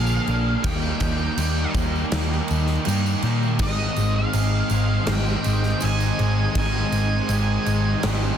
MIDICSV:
0, 0, Header, 1, 8, 480
1, 0, Start_track
1, 0, Tempo, 738916
1, 422, Time_signature, 4, 2, 24, 8
1, 5441, End_track
2, 0, Start_track
2, 0, Title_t, "Analog synth pad"
2, 0, Program_c, 0, 89
2, 2329, Note_on_c, 0, 87, 97
2, 2331, Note_on_c, 0, 75, 73
2, 2334, Note_on_c, 0, 84, 81
2, 5441, Note_off_c, 0, 75, 0
2, 5441, Note_off_c, 0, 84, 0
2, 5441, Note_off_c, 0, 87, 0
2, 5441, End_track
3, 0, Start_track
3, 0, Title_t, "Lead electric guitar"
3, 0, Program_c, 1, 29
3, 0, Note_on_c, 1, 77, 95
3, 425, Note_on_c, 1, 79, 100
3, 454, Note_off_c, 1, 77, 0
3, 1117, Note_off_c, 1, 79, 0
3, 2353, Note_on_c, 1, 75, 83
3, 2700, Note_off_c, 1, 75, 0
3, 2703, Note_on_c, 1, 77, 85
3, 3073, Note_off_c, 1, 77, 0
3, 3084, Note_on_c, 1, 77, 87
3, 3320, Note_off_c, 1, 77, 0
3, 3328, Note_on_c, 1, 79, 104
3, 3798, Note_off_c, 1, 79, 0
3, 3801, Note_on_c, 1, 80, 104
3, 4269, Note_off_c, 1, 80, 0
3, 4277, Note_on_c, 1, 80, 98
3, 5204, Note_off_c, 1, 80, 0
3, 5441, End_track
4, 0, Start_track
4, 0, Title_t, "Clean electric guitar"
4, 0, Program_c, 2, 27
4, 0, Note_on_c, 2, 46, 95
4, 0, Note_on_c, 2, 50, 94
4, 178, Note_off_c, 2, 46, 0
4, 181, Note_off_c, 2, 50, 0
4, 641, Note_on_c, 2, 67, 71
4, 662, Note_on_c, 2, 58, 59
4, 883, Note_off_c, 2, 58, 0
4, 897, Note_off_c, 2, 67, 0
4, 2355, Note_on_c, 2, 67, 96
4, 2561, Note_off_c, 2, 67, 0
4, 2564, Note_on_c, 2, 67, 73
4, 2575, Note_on_c, 2, 63, 71
4, 2586, Note_on_c, 2, 60, 62
4, 2816, Note_off_c, 2, 60, 0
4, 2824, Note_off_c, 2, 63, 0
4, 2826, Note_off_c, 2, 67, 0
4, 2829, Note_on_c, 2, 67, 75
4, 3303, Note_off_c, 2, 67, 0
4, 3311, Note_on_c, 2, 67, 94
4, 3785, Note_off_c, 2, 67, 0
4, 3793, Note_on_c, 2, 67, 84
4, 4277, Note_off_c, 2, 67, 0
4, 4285, Note_on_c, 2, 67, 109
4, 4491, Note_off_c, 2, 67, 0
4, 4499, Note_on_c, 2, 67, 69
4, 4510, Note_on_c, 2, 63, 67
4, 4518, Note_on_c, 2, 60, 65
4, 4735, Note_off_c, 2, 60, 0
4, 4740, Note_off_c, 2, 63, 0
4, 4746, Note_off_c, 2, 67, 0
4, 4753, Note_on_c, 2, 67, 86
4, 5225, Note_off_c, 2, 67, 0
4, 5233, Note_on_c, 2, 67, 94
4, 5441, Note_off_c, 2, 67, 0
4, 5441, End_track
5, 0, Start_track
5, 0, Title_t, "Overdriven electric guitar"
5, 0, Program_c, 3, 29
5, 0, Note_on_c, 3, 46, 97
5, 0, Note_on_c, 3, 50, 100
5, 0, Note_on_c, 3, 53, 101
5, 0, Note_on_c, 3, 58, 100
5, 0, Note_on_c, 3, 62, 103
5, 0, Note_on_c, 3, 68, 98
5, 165, Note_off_c, 3, 46, 0
5, 169, Note_off_c, 3, 50, 0
5, 172, Note_off_c, 3, 53, 0
5, 173, Note_on_c, 3, 46, 90
5, 177, Note_off_c, 3, 58, 0
5, 177, Note_on_c, 3, 50, 88
5, 179, Note_off_c, 3, 62, 0
5, 180, Note_off_c, 3, 68, 0
5, 180, Note_on_c, 3, 53, 84
5, 185, Note_on_c, 3, 58, 91
5, 187, Note_on_c, 3, 62, 95
5, 188, Note_on_c, 3, 68, 92
5, 403, Note_off_c, 3, 46, 0
5, 405, Note_off_c, 3, 50, 0
5, 406, Note_off_c, 3, 53, 0
5, 407, Note_off_c, 3, 58, 0
5, 410, Note_off_c, 3, 62, 0
5, 410, Note_off_c, 3, 68, 0
5, 410, Note_on_c, 3, 51, 110
5, 413, Note_on_c, 3, 55, 100
5, 415, Note_on_c, 3, 58, 104
5, 415, Note_on_c, 3, 63, 105
5, 420, Note_on_c, 3, 67, 107
5, 886, Note_off_c, 3, 51, 0
5, 893, Note_off_c, 3, 58, 0
5, 894, Note_on_c, 3, 51, 92
5, 896, Note_off_c, 3, 55, 0
5, 899, Note_on_c, 3, 55, 86
5, 901, Note_on_c, 3, 58, 90
5, 902, Note_off_c, 3, 63, 0
5, 903, Note_off_c, 3, 67, 0
5, 905, Note_on_c, 3, 63, 93
5, 905, Note_on_c, 3, 67, 94
5, 1124, Note_off_c, 3, 51, 0
5, 1132, Note_on_c, 3, 51, 79
5, 1133, Note_off_c, 3, 55, 0
5, 1134, Note_off_c, 3, 58, 0
5, 1136, Note_on_c, 3, 55, 83
5, 1137, Note_off_c, 3, 63, 0
5, 1140, Note_off_c, 3, 67, 0
5, 1140, Note_on_c, 3, 63, 91
5, 1141, Note_on_c, 3, 58, 91
5, 1143, Note_on_c, 3, 67, 92
5, 1366, Note_off_c, 3, 51, 0
5, 1373, Note_off_c, 3, 58, 0
5, 1374, Note_on_c, 3, 51, 91
5, 1377, Note_off_c, 3, 55, 0
5, 1379, Note_off_c, 3, 63, 0
5, 1380, Note_on_c, 3, 55, 95
5, 1381, Note_on_c, 3, 58, 96
5, 1381, Note_on_c, 3, 63, 111
5, 1382, Note_off_c, 3, 67, 0
5, 1384, Note_on_c, 3, 67, 114
5, 1848, Note_off_c, 3, 51, 0
5, 1854, Note_off_c, 3, 58, 0
5, 1856, Note_off_c, 3, 55, 0
5, 1856, Note_on_c, 3, 51, 85
5, 1859, Note_on_c, 3, 55, 99
5, 1860, Note_off_c, 3, 63, 0
5, 1862, Note_on_c, 3, 58, 88
5, 1862, Note_on_c, 3, 63, 98
5, 1864, Note_off_c, 3, 67, 0
5, 1866, Note_on_c, 3, 67, 98
5, 2091, Note_off_c, 3, 51, 0
5, 2095, Note_off_c, 3, 55, 0
5, 2095, Note_off_c, 3, 58, 0
5, 2097, Note_on_c, 3, 55, 84
5, 2098, Note_on_c, 3, 51, 77
5, 2101, Note_off_c, 3, 63, 0
5, 2103, Note_on_c, 3, 58, 80
5, 2104, Note_off_c, 3, 67, 0
5, 2104, Note_on_c, 3, 63, 91
5, 2107, Note_on_c, 3, 67, 87
5, 2326, Note_off_c, 3, 51, 0
5, 2328, Note_off_c, 3, 58, 0
5, 2332, Note_on_c, 3, 44, 100
5, 2333, Note_off_c, 3, 55, 0
5, 2333, Note_on_c, 3, 51, 94
5, 2336, Note_off_c, 3, 63, 0
5, 2336, Note_on_c, 3, 56, 97
5, 2337, Note_on_c, 3, 60, 98
5, 2338, Note_on_c, 3, 63, 95
5, 2352, Note_off_c, 3, 67, 0
5, 2805, Note_off_c, 3, 44, 0
5, 2806, Note_off_c, 3, 51, 0
5, 2808, Note_on_c, 3, 44, 89
5, 2814, Note_on_c, 3, 51, 86
5, 2815, Note_off_c, 3, 56, 0
5, 2817, Note_off_c, 3, 60, 0
5, 2818, Note_on_c, 3, 56, 79
5, 2819, Note_off_c, 3, 63, 0
5, 2819, Note_on_c, 3, 60, 90
5, 2822, Note_on_c, 3, 63, 89
5, 2823, Note_on_c, 3, 68, 101
5, 3043, Note_off_c, 3, 51, 0
5, 3044, Note_off_c, 3, 44, 0
5, 3046, Note_on_c, 3, 44, 73
5, 3051, Note_off_c, 3, 56, 0
5, 3051, Note_on_c, 3, 51, 95
5, 3052, Note_off_c, 3, 63, 0
5, 3053, Note_off_c, 3, 60, 0
5, 3054, Note_on_c, 3, 56, 84
5, 3055, Note_on_c, 3, 60, 97
5, 3055, Note_on_c, 3, 63, 84
5, 3059, Note_off_c, 3, 68, 0
5, 3061, Note_on_c, 3, 68, 95
5, 3284, Note_off_c, 3, 44, 0
5, 3284, Note_off_c, 3, 51, 0
5, 3290, Note_off_c, 3, 56, 0
5, 3290, Note_off_c, 3, 60, 0
5, 3291, Note_off_c, 3, 63, 0
5, 3292, Note_on_c, 3, 44, 101
5, 3292, Note_on_c, 3, 51, 91
5, 3292, Note_on_c, 3, 56, 103
5, 3298, Note_on_c, 3, 60, 89
5, 3299, Note_on_c, 3, 63, 107
5, 3758, Note_off_c, 3, 44, 0
5, 3765, Note_off_c, 3, 51, 0
5, 3766, Note_off_c, 3, 60, 0
5, 3766, Note_on_c, 3, 44, 101
5, 3769, Note_off_c, 3, 56, 0
5, 3770, Note_off_c, 3, 63, 0
5, 3771, Note_on_c, 3, 56, 88
5, 3772, Note_on_c, 3, 51, 98
5, 3774, Note_on_c, 3, 60, 94
5, 3778, Note_on_c, 3, 63, 99
5, 3779, Note_off_c, 3, 68, 0
5, 3781, Note_on_c, 3, 68, 102
5, 4007, Note_off_c, 3, 44, 0
5, 4009, Note_off_c, 3, 51, 0
5, 4015, Note_off_c, 3, 60, 0
5, 4015, Note_on_c, 3, 44, 90
5, 4017, Note_on_c, 3, 51, 85
5, 4019, Note_off_c, 3, 56, 0
5, 4021, Note_off_c, 3, 63, 0
5, 4022, Note_on_c, 3, 56, 86
5, 4023, Note_on_c, 3, 60, 93
5, 4025, Note_off_c, 3, 68, 0
5, 4028, Note_on_c, 3, 68, 92
5, 4029, Note_on_c, 3, 63, 90
5, 4253, Note_off_c, 3, 44, 0
5, 4253, Note_off_c, 3, 51, 0
5, 4261, Note_on_c, 3, 44, 94
5, 4261, Note_on_c, 3, 51, 94
5, 4263, Note_off_c, 3, 60, 0
5, 4267, Note_off_c, 3, 56, 0
5, 4267, Note_off_c, 3, 63, 0
5, 4269, Note_on_c, 3, 56, 102
5, 4271, Note_on_c, 3, 60, 98
5, 4275, Note_on_c, 3, 63, 108
5, 4733, Note_off_c, 3, 44, 0
5, 4737, Note_off_c, 3, 51, 0
5, 4739, Note_off_c, 3, 60, 0
5, 4740, Note_on_c, 3, 44, 81
5, 4741, Note_off_c, 3, 56, 0
5, 4741, Note_off_c, 3, 63, 0
5, 4744, Note_on_c, 3, 56, 91
5, 4745, Note_on_c, 3, 51, 96
5, 4746, Note_on_c, 3, 60, 96
5, 4749, Note_off_c, 3, 68, 0
5, 4749, Note_on_c, 3, 63, 88
5, 4752, Note_on_c, 3, 68, 95
5, 4960, Note_off_c, 3, 44, 0
5, 4967, Note_off_c, 3, 51, 0
5, 4968, Note_on_c, 3, 44, 80
5, 4972, Note_off_c, 3, 60, 0
5, 4973, Note_off_c, 3, 63, 0
5, 4975, Note_on_c, 3, 51, 91
5, 4978, Note_off_c, 3, 56, 0
5, 4980, Note_off_c, 3, 68, 0
5, 4980, Note_on_c, 3, 56, 86
5, 4980, Note_on_c, 3, 60, 94
5, 4981, Note_on_c, 3, 63, 99
5, 4982, Note_on_c, 3, 68, 99
5, 5213, Note_off_c, 3, 44, 0
5, 5214, Note_off_c, 3, 51, 0
5, 5217, Note_off_c, 3, 56, 0
5, 5221, Note_off_c, 3, 60, 0
5, 5221, Note_on_c, 3, 44, 94
5, 5221, Note_on_c, 3, 51, 97
5, 5223, Note_off_c, 3, 63, 0
5, 5225, Note_on_c, 3, 56, 107
5, 5228, Note_on_c, 3, 60, 98
5, 5230, Note_on_c, 3, 63, 96
5, 5247, Note_off_c, 3, 68, 0
5, 5441, Note_off_c, 3, 44, 0
5, 5441, Note_off_c, 3, 51, 0
5, 5441, Note_off_c, 3, 56, 0
5, 5441, Note_off_c, 3, 60, 0
5, 5441, Note_off_c, 3, 63, 0
5, 5441, End_track
6, 0, Start_track
6, 0, Title_t, "Distorted electric guitar"
6, 0, Program_c, 4, 30
6, 441, Note_on_c, 4, 63, 113
6, 657, Note_off_c, 4, 63, 0
6, 660, Note_on_c, 4, 63, 78
6, 683, Note_on_c, 4, 58, 64
6, 1383, Note_off_c, 4, 58, 0
6, 1393, Note_off_c, 4, 63, 0
6, 2570, Note_on_c, 4, 56, 77
6, 2591, Note_on_c, 4, 51, 60
6, 3290, Note_off_c, 4, 51, 0
6, 3309, Note_off_c, 4, 56, 0
6, 4498, Note_on_c, 4, 56, 80
6, 4513, Note_on_c, 4, 51, 58
6, 5216, Note_off_c, 4, 51, 0
6, 5227, Note_off_c, 4, 56, 0
6, 5441, End_track
7, 0, Start_track
7, 0, Title_t, "Picked electric bass"
7, 0, Program_c, 5, 34
7, 0, Note_on_c, 5, 34, 87
7, 115, Note_off_c, 5, 34, 0
7, 180, Note_on_c, 5, 34, 97
7, 353, Note_off_c, 5, 34, 0
7, 418, Note_on_c, 5, 39, 92
7, 592, Note_off_c, 5, 39, 0
7, 656, Note_on_c, 5, 39, 84
7, 831, Note_off_c, 5, 39, 0
7, 892, Note_on_c, 5, 39, 91
7, 1069, Note_off_c, 5, 39, 0
7, 1138, Note_on_c, 5, 39, 86
7, 1312, Note_off_c, 5, 39, 0
7, 1377, Note_on_c, 5, 39, 86
7, 1552, Note_off_c, 5, 39, 0
7, 1628, Note_on_c, 5, 39, 91
7, 1799, Note_off_c, 5, 39, 0
7, 1865, Note_on_c, 5, 43, 90
7, 2037, Note_off_c, 5, 43, 0
7, 2098, Note_on_c, 5, 46, 98
7, 2338, Note_on_c, 5, 32, 92
7, 2348, Note_off_c, 5, 46, 0
7, 2512, Note_off_c, 5, 32, 0
7, 2580, Note_on_c, 5, 32, 93
7, 2754, Note_off_c, 5, 32, 0
7, 2819, Note_on_c, 5, 32, 88
7, 2993, Note_off_c, 5, 32, 0
7, 3056, Note_on_c, 5, 32, 82
7, 3231, Note_off_c, 5, 32, 0
7, 3296, Note_on_c, 5, 32, 87
7, 3471, Note_off_c, 5, 32, 0
7, 3548, Note_on_c, 5, 32, 91
7, 3719, Note_off_c, 5, 32, 0
7, 3789, Note_on_c, 5, 32, 87
7, 3960, Note_off_c, 5, 32, 0
7, 4026, Note_on_c, 5, 32, 99
7, 4198, Note_off_c, 5, 32, 0
7, 4261, Note_on_c, 5, 32, 97
7, 4435, Note_off_c, 5, 32, 0
7, 4495, Note_on_c, 5, 32, 95
7, 4671, Note_off_c, 5, 32, 0
7, 4736, Note_on_c, 5, 32, 89
7, 4912, Note_off_c, 5, 32, 0
7, 4981, Note_on_c, 5, 32, 86
7, 5155, Note_off_c, 5, 32, 0
7, 5221, Note_on_c, 5, 32, 91
7, 5395, Note_off_c, 5, 32, 0
7, 5441, End_track
8, 0, Start_track
8, 0, Title_t, "Drums"
8, 43, Note_on_c, 9, 54, 69
8, 108, Note_off_c, 9, 54, 0
8, 174, Note_on_c, 9, 54, 28
8, 179, Note_on_c, 9, 49, 57
8, 238, Note_off_c, 9, 54, 0
8, 244, Note_off_c, 9, 49, 0
8, 415, Note_on_c, 9, 49, 85
8, 417, Note_on_c, 9, 36, 123
8, 480, Note_off_c, 9, 49, 0
8, 482, Note_off_c, 9, 36, 0
8, 534, Note_on_c, 9, 54, 27
8, 599, Note_off_c, 9, 54, 0
8, 650, Note_on_c, 9, 49, 62
8, 655, Note_on_c, 9, 36, 87
8, 661, Note_on_c, 9, 54, 73
8, 715, Note_off_c, 9, 49, 0
8, 720, Note_off_c, 9, 36, 0
8, 726, Note_off_c, 9, 54, 0
8, 773, Note_on_c, 9, 54, 28
8, 838, Note_off_c, 9, 54, 0
8, 894, Note_on_c, 9, 49, 89
8, 898, Note_on_c, 9, 54, 97
8, 959, Note_off_c, 9, 49, 0
8, 963, Note_off_c, 9, 54, 0
8, 1026, Note_on_c, 9, 54, 28
8, 1091, Note_off_c, 9, 54, 0
8, 1133, Note_on_c, 9, 49, 64
8, 1134, Note_on_c, 9, 36, 82
8, 1146, Note_on_c, 9, 54, 77
8, 1198, Note_off_c, 9, 49, 0
8, 1199, Note_off_c, 9, 36, 0
8, 1211, Note_off_c, 9, 54, 0
8, 1269, Note_on_c, 9, 54, 28
8, 1334, Note_off_c, 9, 54, 0
8, 1374, Note_on_c, 9, 49, 80
8, 1378, Note_on_c, 9, 38, 106
8, 1439, Note_off_c, 9, 49, 0
8, 1443, Note_off_c, 9, 38, 0
8, 1516, Note_on_c, 9, 54, 29
8, 1581, Note_off_c, 9, 54, 0
8, 1610, Note_on_c, 9, 49, 68
8, 1627, Note_on_c, 9, 54, 77
8, 1675, Note_off_c, 9, 49, 0
8, 1692, Note_off_c, 9, 54, 0
8, 1733, Note_on_c, 9, 38, 37
8, 1753, Note_on_c, 9, 54, 28
8, 1798, Note_off_c, 9, 38, 0
8, 1818, Note_off_c, 9, 54, 0
8, 1851, Note_on_c, 9, 49, 91
8, 1873, Note_on_c, 9, 54, 109
8, 1916, Note_off_c, 9, 49, 0
8, 1938, Note_off_c, 9, 54, 0
8, 1990, Note_on_c, 9, 54, 77
8, 2055, Note_off_c, 9, 54, 0
8, 2095, Note_on_c, 9, 49, 62
8, 2109, Note_on_c, 9, 54, 31
8, 2160, Note_off_c, 9, 49, 0
8, 2174, Note_off_c, 9, 54, 0
8, 2228, Note_on_c, 9, 54, 28
8, 2293, Note_off_c, 9, 54, 0
8, 2332, Note_on_c, 9, 49, 96
8, 2336, Note_on_c, 9, 36, 117
8, 2397, Note_off_c, 9, 49, 0
8, 2400, Note_off_c, 9, 36, 0
8, 2575, Note_on_c, 9, 49, 60
8, 2581, Note_on_c, 9, 54, 86
8, 2640, Note_off_c, 9, 49, 0
8, 2646, Note_off_c, 9, 54, 0
8, 2815, Note_on_c, 9, 49, 92
8, 2823, Note_on_c, 9, 54, 102
8, 2880, Note_off_c, 9, 49, 0
8, 2887, Note_off_c, 9, 54, 0
8, 3050, Note_on_c, 9, 49, 68
8, 3059, Note_on_c, 9, 54, 86
8, 3115, Note_off_c, 9, 49, 0
8, 3124, Note_off_c, 9, 54, 0
8, 3291, Note_on_c, 9, 49, 80
8, 3294, Note_on_c, 9, 38, 101
8, 3356, Note_off_c, 9, 49, 0
8, 3359, Note_off_c, 9, 38, 0
8, 3418, Note_on_c, 9, 54, 32
8, 3483, Note_off_c, 9, 54, 0
8, 3535, Note_on_c, 9, 49, 64
8, 3535, Note_on_c, 9, 54, 80
8, 3600, Note_off_c, 9, 49, 0
8, 3600, Note_off_c, 9, 54, 0
8, 3659, Note_on_c, 9, 38, 34
8, 3724, Note_off_c, 9, 38, 0
8, 3771, Note_on_c, 9, 54, 101
8, 3780, Note_on_c, 9, 49, 91
8, 3836, Note_off_c, 9, 54, 0
8, 3845, Note_off_c, 9, 49, 0
8, 3899, Note_on_c, 9, 54, 83
8, 3964, Note_off_c, 9, 54, 0
8, 4021, Note_on_c, 9, 49, 58
8, 4024, Note_on_c, 9, 54, 34
8, 4086, Note_off_c, 9, 49, 0
8, 4089, Note_off_c, 9, 54, 0
8, 4256, Note_on_c, 9, 49, 82
8, 4257, Note_on_c, 9, 36, 123
8, 4321, Note_off_c, 9, 49, 0
8, 4322, Note_off_c, 9, 36, 0
8, 4496, Note_on_c, 9, 54, 83
8, 4497, Note_on_c, 9, 49, 57
8, 4561, Note_off_c, 9, 54, 0
8, 4562, Note_off_c, 9, 49, 0
8, 4734, Note_on_c, 9, 49, 82
8, 4743, Note_on_c, 9, 54, 96
8, 4799, Note_off_c, 9, 49, 0
8, 4808, Note_off_c, 9, 54, 0
8, 4978, Note_on_c, 9, 49, 67
8, 4984, Note_on_c, 9, 54, 75
8, 5043, Note_off_c, 9, 49, 0
8, 5049, Note_off_c, 9, 54, 0
8, 5216, Note_on_c, 9, 49, 77
8, 5219, Note_on_c, 9, 38, 107
8, 5281, Note_off_c, 9, 49, 0
8, 5284, Note_off_c, 9, 38, 0
8, 5339, Note_on_c, 9, 54, 29
8, 5404, Note_off_c, 9, 54, 0
8, 5441, End_track
0, 0, End_of_file